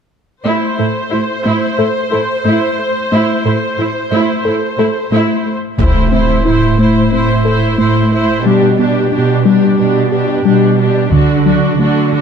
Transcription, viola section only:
0.45 0.76 E4 soft
0.45 5.55 C5 soft
0.78 0.86 E4 soft
1.11 1.19 E4 soft
1.45 1.76 E4 soft
1.78 1.86 E4 soft
2.12 2.20 E4 soft
2.45 2.76 E4 soft
3.12 3.43 E4 soft
3.46 3.54 E4 soft
3.80 3.88 E4 soft
4.12 4.43 E4 soft
4.46 4.54 E4 soft
4.80 4.88 E4 soft
5.12 5.43 E4 soft
5.79 6.11 E4 soft
5.79 6.11 C5 soft
6.12 6.45 E4 soft
6.12 6.45 C5 soft
6.46 6.78 E4 soft
6.46 6.78 C5 soft
6.79 7.11 E4 soft
6.79 7.11 C5 soft
7.12 7.45 E4 soft
7.12 7.45 C5 soft
7.46 7.78 E4 soft
7.46 7.77 C5 soft
7.79 8.10 E4 soft
7.79 8.10 C5 soft
8.11 8.45 E4 soft
8.11 8.45 C5 soft
8.45 8.77 D4 soft
8.45 8.77 G4 soft
8.79 9.11 D4 soft
8.79 9.11 G4 soft
9.12 9.44 D4 soft
9.12 9.44 G4 soft
9.45 9.78 D4 soft
9.45 9.78 G4 soft
9.79 10.10 D4 soft
9.79 10.11 G4 soft
10.11 10.44 D4 soft
10.11 10.44 G4 soft
10.45 10.78 D4 soft
10.45 10.78 G4 soft
10.79 11.11 D4 soft
10.79 11.12 G4 soft
11.12 11.45 D4 soft
11.12 11.45 F#4 soft
11.46 11.78 D4 soft
11.46 11.78 F#4 soft
11.79 12.11 D4 soft
11.79 12.11 F#4 soft
12.12 12.21 D4 soft
12.12 12.21 F#4 soft

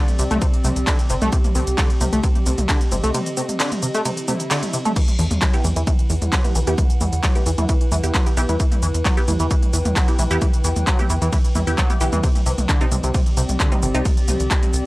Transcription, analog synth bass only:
0.19 0.28 C2 loud
0.31 0.39 C2 medium
0.64 0.73 C2 loud
0.76 0.85 C2 medium
1.10 1.19 G1 medium
1.22 1.30 C2 medium
1.55 1.64 C2 medium
1.67 1.75 C2 medium
2.01 2.10 C2 medium
2.13 2.21 C2 medium
2.46 2.55 C2 loud
2.58 2.66 C2 medium
2.92 3.01 G1 medium
3.04 3.12 C2 medium
5.19 5.28 E2 medium
5.31 5.39 E2 medium
5.64 5.73 E2 loud
5.76 5.85 E2 medium
6.10 6.19 E2 loud
6.22 6.30 E2 medium
6.55 6.64 B1 medium
6.67 6.75 E2 medium
7.01 7.10 E2 medium
7.13 7.21 E2 medium
7.46 7.55 E2 medium
7.58 7.66 E2 medium
7.92 8.01 E2 loud
8.04 8.12 E2 medium
8.37 8.46 B1 medium
8.49 8.57 E2 medium
8.83 8.92 E2 medium
8.95 9.03 E2 medium
9.28 9.37 E2 medium
9.40 9.48 E2 medium
9.74 9.83 E2 medium
9.85 9.94 E2 medium
10.19 10.28 B1 medium
10.31 10.39 E2 medium
10.64 10.73 E2 medium
10.76 10.85 E2 medium
11.10 11.19 E2 medium
11.22 11.30 E2 medium
11.55 11.64 E2 medium
11.67 11.75 E2 medium
12.01 12.10 B1 medium
12.13 12.21 E2 medium
12.46 12.55 C2 medium
12.58 12.66 C2 medium
12.92 13.01 C2 medium
13.04 13.12 C2 medium
13.37 13.46 C2 loud
13.49 13.57 C2 medium
13.83 13.92 G1 medium
13.94 14.03 C2 medium
14.28 14.37 C2 medium
14.40 14.48 C2 medium
14.73 14.82 C2 medium

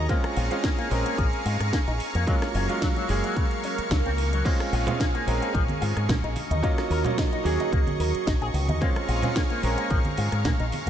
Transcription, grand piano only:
0.09 0.47 G#3 medium
0.09 0.48 C4 medium
0.09 0.48 C#4 medium
0.09 0.48 F4 loud
0.51 0.88 G#3 medium
0.51 0.88 C4 medium
0.51 0.88 C#4 medium
0.51 0.88 F4 medium
0.90 2.24 G#3 medium
0.90 2.24 C4 medium
0.90 2.24 C#4 medium
0.90 2.25 A#4 loud
2.27 2.65 G#3 medium
2.27 2.66 A#3 medium
2.27 2.66 C#4 medium
2.27 2.66 F4 loud
2.69 3.06 G#3 medium
2.69 3.06 A#3 medium
2.69 3.06 C#4 medium
2.69 3.06 F4 medium
3.08 4.42 G#3 medium
3.08 4.42 A#3 medium
3.08 4.43 G#4 loud
4.45 4.83 G#3 loud
4.45 4.84 C4 medium
4.45 4.84 C#4 medium
4.45 4.84 F4 loud
4.86 5.24 G#3 medium
4.86 5.24 C4 medium
4.86 5.24 C#4 medium
4.86 5.24 F4 medium
5.26 6.34 G#3 medium
5.26 6.35 C4 medium
5.26 6.35 C#4 medium
5.26 6.35 A#4 loud
6.63 7.01 F#3 medium
6.63 7.02 A#3 medium
6.63 7.02 C#4 medium
6.63 7.02 F4 loud
7.05 7.42 F#3 medium
7.05 7.42 A#3 medium
7.05 7.42 C#4 medium
7.05 7.42 F4 medium
7.44 8.78 F#3 medium
7.44 8.78 A#3 medium
7.44 8.79 C#4 medium
7.44 8.79 G#4 loud
8.81 9.20 G#3 medium
8.81 9.20 C4 medium
8.81 9.20 C#4 medium
8.81 9.20 F4 loud
9.23 9.60 G#3 medium
9.23 9.60 C4 medium
9.23 9.60 C#4 medium
9.23 9.61 F4 medium
9.62 10.90 G#3 medium
9.62 10.90 C4 medium
9.62 10.90 C#4 medium
9.62 10.90 A#4 medium

